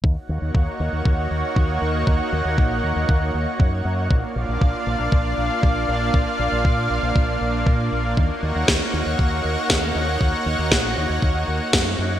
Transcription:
<<
  \new Staff \with { instrumentName = "Analog synth pad" } { \time 4/4 \key ees \minor \tempo 4 = 118 << { <ees' ges' des'' ges''>1~ | <ees' ges' des'' ges''>1 | <d' f' d'' f''>1~ | <d' f' d'' f''>1 |
<ees' ges' des'' ges''>1~ | <ees' ges' des'' ges''>1 | } \\ { bes1~ | bes1 | bes1~ | bes1~ |
bes1~ | bes1 | } >> }
  \new Staff \with { instrumentName = "Fingered electric bass" } { \clef bass \time 4/4 \key ees \minor ees,16 r16 ees,16 ees,16 ees,16 r16 ees,16 ees,16 ees,8 ees,16 r16 ees,8 ees,8 | ees,16 r16 ees,16 ees,16 bes,,8 ees,16 ees,16 ees,8 ees,16 r16 ges,8 ges,8 | bes,,16 r16 bes,,16 bes,,16 bes,,16 r16 bes,,16 bes,,16 bes,,8 bes,,16 r16 bes,,8 bes,,8 | bes,,16 r16 bes,,16 bes,,16 bes,8 bes,,16 bes,,16 bes,,8 bes,,8 bes,8 bes,,8 |
ees,16 r16 ees,16 ees,16 r8 ees,16 ees,16 ees,8 ees,16 r16 ees,8 ees,8 | ees,16 r16 ees,16 ees,16 bes,,8 ees,16 ees,16 ees,8 ees,16 r16 ges,8 ges,8 | }
  \new DrumStaff \with { instrumentName = "Drums" } \drummode { \time 4/4 bd4 bd4 bd4 bd4 | bd4 bd4 bd4 bd4 | bd4 bd4 bd4 bd4 | bd4 bd4 bd4 bd4 |
bd4 <bd sn>4 bd4 <bd sn>4 | bd4 <bd sn>4 bd4 <bd sn>4 | }
>>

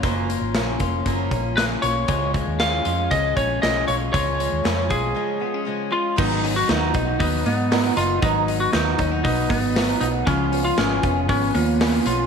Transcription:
<<
  \new Staff \with { instrumentName = "Lead electric guitar" } { \time 4/4 \key gis \dorian \tempo 4 = 117 r2. b'8 cis''8~ | cis''8 r8 eis''4 dis''8 cis''8 dis''8 cis''8 | cis''4. gis'4. r8 eis'8 | dis'8. fis'16 dis'4 dis'8 b4 eis'8 |
dis'8. fis'16 dis'4 dis'8 b4 dis'8 | cis'8. eis'16 cis'4 cis'8 ais4 eis'8 | }
  \new Staff \with { instrumentName = "Clean electric guitar" } { \time 4/4 \key gis \dorian <ais cis' eis'>8 ais8 cis'8 eis'8 ais8 cis'8 ais8 eis'8 | <gis eis'>8 gis8 cis'8 eis'8 gis8 cis'8 gis8 eis'8 | <gis eis'>8 gis8 cis'8 eis'8 gis8 b16 cis'16 gis8 eis'8 | fis8 cis'16 dis'16 fis'8 dis'8 b8 dis'8 b8 dis'8 |
fis8 dis'8 fis'8 cis'16 dis'16 b8 dis'8 b8 dis'8 | eis8 cis'8 gis'8 cis'8 b8 cis'8 b8 cis'8 | }
  \new Staff \with { instrumentName = "Twelve-string acoustic guitar" } { \clef bass \time 4/4 \key gis \dorian <fis, cis eis ais cis'>8 <eis ais cis'>8 <cis eis ais cis'>8 <eis ais cis'>8 <fis, cis eis ais cis'>8 <eis ais cis'>8 <cis eis ais cis'>8 <eis ais cis'>8 | <cis eis gis cis'>8 <eis gis cis'>8 <cis eis gis cis'>8 <eis gis cis'>8 <cis eis gis cis'>8 <eis gis cis'>8 <cis eis gis cis'>8 <eis gis cis'>8 | <cis eis gis cis'>8 <eis gis cis'>8 <cis eis gis cis'>8 <eis gis cis'>8 <cis eis gis cis'>8 <eis gis cis'>8 <cis eis gis cis'>8 <eis gis cis'>8 | <gis, dis fis b dis'>8 <fis b dis'>8 <gis, dis fis b dis'>8 <fis b dis'>8 <dis fis b dis'>8 <fis b dis'>8 <gis, dis fis b dis'>8 <fis b dis'>8 |
<gis, dis fis b dis'>8 <fis b dis'>8 <gis, dis fis b dis'>8 <fis b dis'>8 <dis fis b dis'>8 <fis b dis'>8 <gis, dis fis b dis'>8 <fis b dis'>8 | <cis gis b eis'>8 <gis b eis'>8 <cis gis b eis'>8 <gis b eis'>8 <cis gis b eis'>8 <gis b eis'>8 <cis gis b eis'>8 <gis b eis'>8 | }
  \new Staff \with { instrumentName = "Fingered electric bass" } { \clef bass \time 4/4 \key gis \dorian fis,,8. gis,,16 ais,,8 eis,,8 fis,,8 ais,,4 b,,8 | cis,8. dis,8. eis,8 cis,8 ais,,8 b,,8 b,,8 | cis,8. dis,16 eis,8 b,,8 r2 | gis,,4 dis,8 b,,8 dis,8 gis,4 fis,,8 |
gis,,4 dis,8 dis,8 b,,8 gis,,4 b,,8 | cis,4 gis,,8 eis,,8 gis,,8 dis,4 b,,8 | }
  \new DrumStaff \with { instrumentName = "Drums" } \drummode { \time 4/4 <hh bd>8 hh8 <hh sn>8 <hh bd>8 <hh bd>8 <hh bd>8 <hh sn>8 hh8 | <hh bd>8 <hh bd>8 <hh sn>8 hh8 <hh bd>8 <hh bd>8 <hh sn>8 hh8 | <hh bd>8 hh8 <hh sn>8 <hh bd>8 r4 r4 | <cymc bd>8 <hho hhp>8 <hho hhp sn>8 <hho hhp bd>8 <hho hhp bd>8 <hho hhp>8 <hho hhp sn>8 <hho hhp>8 |
<hho hhp bd>8 <hho hhp>8 <hho hhp sn>8 <hho hhp bd>8 <hho hhp bd>8 <hho hhp bd>8 <hho hhp sn>8 <hho hhp>8 | <hho hhp bd>8 <hho hhp>8 <hho hhp sn>8 <hho hhp bd>8 <hho hhp bd>8 <hho hhp>8 <hho hhp sn>8 <hho hhp>8 | }
>>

